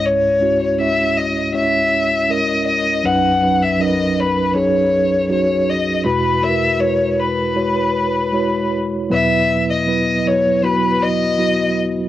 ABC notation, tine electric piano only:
X:1
M:4/4
L:1/8
Q:1/4=80
K:Elyd
V:1 name="Tine electric piano"
[G,CEc] [G,CEF] [G,CEc]2 [G,CEc]2 [G,CEA]2 | [F,CDB] [F,CDB] [F,CDAB]2 [F,CDG]2 [F,CDF]2 | [G,EFB] [G,EFA] [G,EFB]2 [G,EFc]2 [G,EFc]2 | [F,B,EB]2 [F,B,EB] [F,B,EB] [F,B,EF]2 [F,B,EF]2 |]
V:2 name="Tine electric piano" clef=bass
[C,,G,,]6- [C,,G,,] z | [B,,,F,,]8 | [E,,B,,]8 | [E,,B,,]8 |]